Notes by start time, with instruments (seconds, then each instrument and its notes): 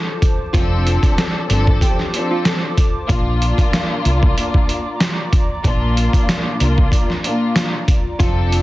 Already playing: string section F3 C4 D4 A4, analog synth pad F4 C5 A5 D6, nylon-string guitar A4
0.22 kick, closed hi-hat
0.53 fingered electric bass F1, string section F3 C4 D4 A4, nylon-string guitar F4, kick, closed hi-hat
0.87 closed hi-hat
1.03 kick, closed hi-hat
1.18 nylon-string guitar A4, snare, closed hi-hat
1.47 fingered electric bass G1, string section F3 C4 D4 A4, closed hi-hat
1.67 nylon-string guitar A4, kick
1.81 nylon-string guitar G4, kick, closed hi-hat
1.99 snare
2.14 string section F3 C4 D4 A4, closed hi-hat
2.31 nylon-string guitar F4
2.45 nylon-string guitar A4, snare, closed hi-hat
2.77 kick, closed hi-hat
3.07 fingered electric bass A#1, string section A#2 A#3 D4 F4, analog synth pad D5 A#5, kick, closed hi-hat
3.42 closed hi-hat
3.58 kick, closed hi-hat
3.73 snare, closed hi-hat
4.05 fingered electric bass C2, closed hi-hat
4.23 kick
4.38 closed hi-hat
4.54 kick
4.69 closed hi-hat
5.00 snare, closed hi-hat
5.33 kick, closed hi-hat
5.64 fingered electric bass A#1, string section A#2 A#3 D4 F4, kick, closed hi-hat
5.97 closed hi-hat
6.13 kick, closed hi-hat
6.29 snare, closed hi-hat
6.59 fingered electric bass C2, string section A#2 A#3 D4 F4, closed hi-hat
6.78 kick
6.92 kick, closed hi-hat
7.10 snare
7.24 string section A#2 A#3 D4 F4, closed hi-hat
7.56 snare, closed hi-hat
7.88 kick, closed hi-hat
8.18 fingered electric bass F1, string section F3 C4 D4 A4, analog synth pad F4 C5 A5 D6, nylon-string guitar F4, kick, closed hi-hat
8.52 closed hi-hat